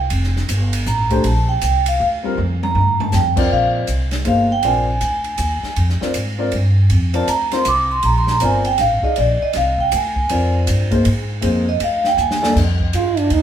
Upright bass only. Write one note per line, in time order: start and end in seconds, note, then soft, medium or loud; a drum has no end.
0.11 0.48 F1 medium
0.49 0.85 G1 medium
0.86 1.23 A1 medium
1.24 1.61 A#1 medium
1.62 1.99 C2 medium
2.00 2.37 D2 medium
2.38 2.74 F2 medium
2.75 3.12 G2 medium
3.13 3.50 F2 loud
3.51 3.87 A#1 medium
3.88 4.25 C2 medium
4.26 4.63 G1 medium
4.63 5.00 A#1 medium
5.01 5.38 D2 medium
5.38 5.61 D#2 medium
5.63 muted upright bass stroke soft
5.76 5.99 F2 medium
6.01 muted upright bass stroke soft
6.14 6.51 G#2 medium
6.53 6.89 G2 medium
6.90 7.27 F2 medium
7.27 7.64 D2 medium
7.65 8.02 C2 medium
8.03 8.40 A#1 medium
8.41 8.78 G1 medium
8.79 9.02 A1 medium
9.02 muted upright bass stroke soft
9.18 9.40 A#1 medium
9.42 muted upright bass stroke soft
9.56 9.92 C2 medium
9.93 10.29 D2 loud
10.30 10.67 F2 medium
10.68 11.04 G2 medium
11.06 11.42 G#2 medium
11.43 11.79 F2 medium
11.81 12.17 D2 medium
12.17 12.54 D#2 medium
12.56 12.92 F2 medium
12.94 13.30 G2 medium
13.30 13.42 D#2 medium